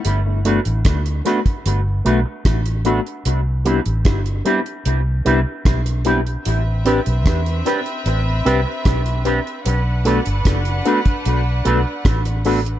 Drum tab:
HH |x-xxxxxxx-x-xxxx|x-xxxxxxx-x-xxxx|x-xxxxxxx-x-xxxx|x-xxxxxxx-x-xxox|
SD |----r-r-----r---|----r-------r---|----r-r-----r---|----r-------r---|
BD |----o--o----o---|----o-------o---|----o-------o---|----o--o----o---|